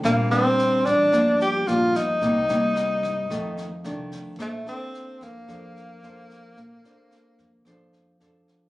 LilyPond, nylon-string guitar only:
\new Staff \with { instrumentName = "Nylon-string guitar" } { \time 4/4 \key bes \major \tempo 4 = 110 << { <g c' d'>8 <g c' d'>4. <f bes d'>4 <f bes d'>4 | <g bes ees'>8 <g bes ees'>4. <ees a>8 r8 <ees a d'>4 | <d' a' c''>8 <d' a' c''>4. <d' a' c''>4 <d' a' c''>4~ | <d' a' c''>8 <d' a' c''>4. <d' a' c''>4 <d' a' c''>4 | } \\ { bes,2 g,2 | c2 f,2 | bes2 f2 | bes2 f2 | } >> }